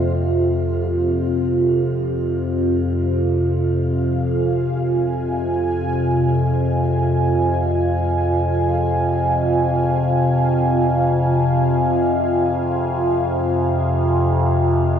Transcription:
Already playing: synth drone F2 C3, analog synth pad F3 A#3 F4 C5 C#5
0.16 synth drone F2 C3
2.70 analog synth pad F5
4.00 analog synth pad G#5

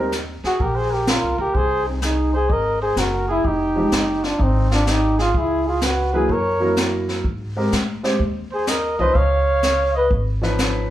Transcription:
Already playing: upright bass D#2, grand piano G3 C4 D#4 A#4
0.12 snare, hi-hat pedal
0.44 flugelhorn F#4, trumpet G#4, muted upright bass stroke, snare
0.60 upright bass A#1, flugelhorn G4, trumpet A#4, brush sweep, kick
0.75 flugelhorn G#4, trumpet C5
0.91 flugelhorn G4, trumpet A#4
1.07 flugelhorn F4, trumpet A#4, snare, hi-hat pedal
1.23 upright bass C2
1.38 upright bass C#2, flugelhorn G4, trumpet A#4
1.54 upright bass C2, flugelhorn G#4, trumpet C5, brush sweep, kick
1.86 flugelhorn C4, trumpet D#4
2.02 flugelhorn D#4, trumpet G#4, snare, hi-hat pedal
2.33 flugelhorn G#4, trumpet C5
2.49 upright bass G#1, flugelhorn A#4, trumpet D#5, brush sweep, kick
2.82 flugelhorn G#4, trumpet C5
2.96 upright bass F#1, flugelhorn F#4, trumpet A#4, snare, hi-hat pedal
3.28 flugelhorn E4, trumpet G#4
3.44 upright bass F1, flugelhorn D#4, trumpet G4, brush sweep, kick
3.76 grand piano F3 G#3 D#4 G4
3.92 upright bass F#1, snare, hi-hat pedal
4.23 flugelhorn D4, trumpet F4, snare
4.39 upright bass G#1, trumpet D#4, brush sweep, kick
4.43 flugelhorn C4
4.71 flugelhorn D4, trumpet F4, snare
4.86 flugelhorn D#4, trumpet G4, snare, hi-hat pedal
5.18 flugelhorn F4, trumpet G#4, snare
5.34 upright bass C#2, flugelhorn E4, trumpet G#4, brush sweep, kick
5.67 flugelhorn F4, trumpet G#4
5.81 trumpet B4, snare, hi-hat pedal
5.86 flugelhorn F#4
6.13 grand piano F#3 A#3 E4 G#4, flugelhorn G#4, trumpet B4
6.29 upright bass F#2, flugelhorn A#4, trumpet C#5, brush sweep, kick
6.60 grand piano F#3 A#3 E4 A#4
6.77 snare, hi-hat pedal
7.09 snare
7.24 upright bass G#2, brush sweep, kick
7.56 grand piano G#3 C4 G4 A#4
7.72 upright bass A2, snare, hi-hat pedal
8.03 grand piano G#3 C4 G4 C5, snare
8.19 upright bass D#2, brush sweep, kick
8.51 flugelhorn G#4, trumpet C5
8.67 flugelhorn A#4, trumpet D#5, snare, hi-hat pedal
8.99 upright bass C2, grand piano F3 C#4 D#4 B4, flugelhorn C5, trumpet D#5
9.14 upright bass C#2, flugelhorn C#5, trumpet F5, brush sweep, kick
9.63 snare, hi-hat pedal
9.94 flugelhorn B4, trumpet D#5
10.10 upright bass G#1, brush sweep, kick
10.42 grand piano F3 C#4 D#4 B4, snare
10.58 snare, hi-hat pedal

